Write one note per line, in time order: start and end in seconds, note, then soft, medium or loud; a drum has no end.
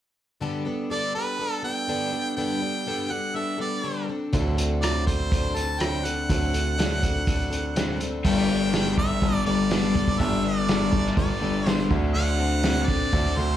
0.41 0.66 G2 medium
0.41 0.66 D3 medium
0.41 0.66 G3 medium
0.41 0.65 B3 medium
0.41 0.65 D4 medium
0.41 0.64 A4 medium
0.65 0.90 G3 soft
0.65 0.90 B3 soft
0.65 0.90 D4 soft
0.65 0.90 A4 soft
0.90 1.15 G2 medium
0.90 1.15 D3 medium
0.90 1.15 G3 medium
0.90 1.15 B3 medium
0.90 1.15 D4 medium
0.90 1.14 A4 medium
0.90 1.14 D5 medium
1.15 1.38 G3 soft
1.15 1.39 B3 soft
1.15 1.40 D4 soft
1.15 1.40 A4 soft
1.15 1.61 B4 medium
1.39 1.64 G3 medium
1.39 1.63 B3 medium
1.39 1.63 D4 medium
1.39 1.62 A4 medium
1.63 1.88 G3 soft
1.63 1.88 B3 soft
1.63 1.88 D4 soft
1.63 1.88 A4 soft
1.63 2.34 G5 medium
1.88 2.13 G2 medium
1.88 2.13 D3 medium
1.88 2.12 G3 medium
1.88 2.12 B3 medium
1.88 2.12 D4 medium
1.88 2.11 A4 medium
2.12 2.37 G3 soft
2.12 2.37 B3 soft
2.12 2.37 D4 soft
2.12 2.37 A4 soft
2.36 2.62 G2 medium
2.36 2.62 D3 medium
2.36 2.62 G3 medium
2.36 2.61 B3 medium
2.36 2.61 D4 medium
2.36 2.60 A4 medium
2.36 3.13 G5 medium
2.61 2.86 G3 soft
2.61 2.86 B3 soft
2.61 2.87 D4 soft
2.61 2.86 A4 soft
2.86 3.11 G2 medium
2.86 3.11 D3 medium
2.86 3.11 G3 medium
2.86 3.11 B3 medium
2.86 3.10 D4 medium
2.86 3.10 A4 medium
3.11 3.33 G3 soft
3.11 3.34 B3 soft
3.11 3.34 D4 soft
3.11 3.35 A4 soft
3.11 3.37 F#5 medium
3.34 3.59 G3 medium
3.34 3.59 B3 soft
3.34 3.58 D4 medium
3.34 3.57 A4 medium
3.34 3.60 E5 medium
3.58 3.83 G3 soft
3.58 3.83 B3 soft
3.58 3.83 D4 soft
3.58 3.83 A4 soft
3.58 4.06 D5 medium
3.83 4.08 G2 medium
3.83 4.09 D3 medium
3.83 4.09 G3 medium
3.83 4.09 B3 medium
3.83 4.08 D4 medium
3.83 4.07 A4 medium
4.08 4.32 C4 soft
4.08 4.33 D4 soft
4.08 4.33 A4 soft
4.33 6.25 D2 medium
4.33 4.58 D3 medium
4.33 4.58 F#3 medium
4.33 4.58 C4 medium
4.33 4.57 D4 medium
4.33 4.56 A4 medium
4.33 kick medium
4.33 closed hi-hat medium
4.57 4.81 C4 soft
4.57 4.82 D4 soft
4.57 4.82 A4 soft
4.57 closed hi-hat medium
4.81 5.06 D3 medium
4.81 5.07 F#3 medium
4.81 5.07 C4 medium
4.81 5.07 D4 medium
4.81 5.05 A4 medium
4.81 5.05 D5 medium
4.81 cross-stick loud
4.81 closed hi-hat medium
5.06 5.31 C4 soft
5.06 5.32 D4 soft
5.06 5.31 A4 soft
5.06 5.57 C5 medium
5.06 kick medium
5.06 closed hi-hat medium
5.32 5.56 F#3 soft
5.32 5.56 C4 medium
5.32 5.54 D4 medium
5.32 5.53 A4 medium
5.32 kick loud
5.32 closed hi-hat medium
5.54 5.79 C4 soft
5.54 5.80 D4 soft
5.54 5.80 A4 medium
5.54 5.82 A5 medium
5.54 closed hi-hat soft
5.80 6.05 D3 medium
5.80 6.05 F#3 medium
5.80 6.05 C4 medium
5.80 6.05 D4 medium
5.80 6.04 A4 medium
5.80 6.06 G5 medium
5.80 cross-stick loud
5.80 closed hi-hat medium
6.05 6.29 C4 soft
6.05 6.29 D4 soft
6.05 6.30 A4 soft
6.05 8.00 F#5 medium
6.05 closed hi-hat medium
6.29 8.21 D2 medium
6.29 6.54 D3 medium
6.29 6.54 F#3 medium
6.29 6.54 C4 medium
6.29 6.53 D4 medium
6.29 6.52 A4 medium
6.29 kick medium
6.29 closed hi-hat medium
6.54 6.78 C4 soft
6.54 6.77 D4 soft
6.54 6.78 A4 soft
6.54 closed hi-hat medium
6.77 7.02 D3 medium
6.77 7.03 F#3 medium
6.77 7.03 C4 medium
6.77 7.02 D4 medium
6.77 7.01 A4 medium
6.77 snare loud
6.77 closed hi-hat medium
7.02 7.27 C4 soft
7.02 7.27 D4 soft
7.02 7.27 A4 medium
7.02 kick medium
7.02 closed hi-hat medium
7.27 7.52 F#3 medium
7.27 7.52 C4 medium
7.27 7.50 D4 medium
7.27 7.49 A4 medium
7.27 kick loud
7.27 closed hi-hat medium
7.50 7.75 C4 soft
7.50 7.76 D4 soft
7.50 7.75 A4 soft
7.50 closed hi-hat soft
7.76 8.00 D3 medium
7.76 8.01 F#3 medium
7.76 8.01 C4 medium
7.76 8.01 D4 medium
7.76 7.99 A4 medium
7.76 snare loud
7.76 closed hi-hat medium
8.00 8.25 C4 soft
8.00 8.24 D4 soft
8.00 8.25 A4 medium
8.00 closed hi-hat medium
8.24 9.18 G1 medium
8.24 8.49 G2 medium
8.24 8.49 D3 medium
8.24 8.49 G3 medium
8.24 8.50 B3 medium
8.24 8.49 D4 medium
8.24 8.48 A4 medium
8.24 8.94 G5 loud
8.24 kick medium
8.24 crash medium
8.49 8.73 G3 soft
8.49 8.73 B3 soft
8.49 8.73 D4 soft
8.49 8.73 A4 soft
8.73 8.98 G2 medium
8.73 8.98 D3 medium
8.73 8.98 G3 medium
8.73 8.98 B3 medium
8.73 8.97 D4 medium
8.73 8.96 A4 medium
8.73 snare loud
8.73 open hi-hat soft
8.98 9.20 G3 soft
8.98 9.21 B3 soft
8.98 9.22 D4 soft
8.98 9.22 A4 soft
8.98 9.44 E5 loud
8.98 kick medium
9.21 9.33 G1 medium
9.21 9.46 G3 medium
9.21 9.46 B3 medium
9.21 9.46 D4 medium
9.21 9.45 A4 medium
9.21 kick medium
9.21 open hi-hat soft
9.46 10.16 G1 medium
9.46 9.70 G3 soft
9.46 9.70 B3 soft
9.46 9.70 D4 soft
9.46 9.71 A4 medium
9.46 10.21 D5 medium
9.70 9.95 G2 medium
9.70 9.96 D3 medium
9.70 9.95 G3 medium
9.70 9.95 B3 medium
9.70 9.94 D4 medium
9.70 9.93 A4 medium
9.70 snare loud
9.70 open hi-hat soft
9.94 10.19 G3 soft
9.94 10.20 B3 soft
9.94 10.20 D4 soft
9.94 10.19 A4 soft
9.94 kick medium
10.08 kick medium
10.19 11.14 G1 medium
10.19 10.44 G2 medium
10.19 10.45 D3 medium
10.19 10.44 G3 medium
10.19 10.44 B3 medium
10.19 10.43 D4 medium
10.19 10.42 A4 medium
10.19 10.46 E5 medium
10.19 kick medium
10.19 open hi-hat soft
10.43 10.67 G3 soft
10.43 10.68 B3 soft
10.43 10.68 D4 soft
10.43 10.68 A4 soft
10.43 11.17 D5 medium
10.68 10.93 G2 medium
10.68 10.93 D3 medium
10.68 10.93 G3 medium
10.68 10.93 B3 medium
10.68 10.92 D4 medium
10.68 10.91 A4 medium
10.68 snare loud
10.68 open hi-hat soft
10.92 11.16 G3 soft
10.92 11.16 B3 soft
10.92 11.18 D4 soft
10.92 11.17 A4 soft
10.92 kick medium
11.06 snare soft
11.17 11.28 G1 medium
11.17 11.42 G3 medium
11.17 11.42 B3 medium
11.17 11.41 D4 medium
11.17 11.41 A4 medium
11.17 11.70 D5 medium
11.17 kick medium
11.17 open hi-hat soft
11.42 11.87 G1 medium
11.42 11.66 G3 soft
11.42 11.66 B3 soft
11.42 11.66 D4 soft
11.42 11.66 A4 medium
11.66 11.91 G2 medium
11.66 11.91 D3 medium
11.66 11.91 G3 medium
11.66 11.91 B3 medium
11.66 11.91 D4 medium
11.66 11.89 A4 medium
11.66 11.87 C5 medium
11.66 snare loud
11.66 open hi-hat medium
11.90 12.85 D2 medium
11.90 12.15 D3 medium
11.90 12.14 C4 soft
11.90 12.15 D4 soft
11.90 12.15 A4 medium
11.90 kick medium
12.14 12.40 D3 medium
12.14 12.40 F#3 medium
12.14 12.40 C4 medium
12.14 12.39 D4 medium
12.14 12.38 A4 medium
12.14 12.89 F#5 loud
12.14 open hi-hat soft
12.39 12.63 C4 soft
12.39 12.63 D4 soft
12.39 12.64 A4 soft
12.63 12.88 D3 medium
12.63 12.89 F#3 medium
12.63 12.88 C4 medium
12.63 12.87 D4 medium
12.63 12.86 A4 medium
12.63 snare loud
12.63 open hi-hat soft
12.87 13.36 D3 medium
12.87 13.11 C4 soft
12.87 13.12 D4 soft
12.87 13.12 A4 soft
12.87 13.39 D5 loud
12.87 kick medium
13.12 13.24 D2 medium
13.12 13.37 F#3 medium
13.12 13.37 C4 medium
13.12 13.36 D4 medium
13.12 13.57 F#4 medium
13.12 13.35 A4 medium
13.12 kick medium
13.12 open hi-hat soft
13.36 13.57 D2 medium
13.36 13.57 D3 medium
13.36 13.57 C4 soft
13.36 13.57 D4 soft
13.36 13.57 A4 medium
13.36 13.57 C5 medium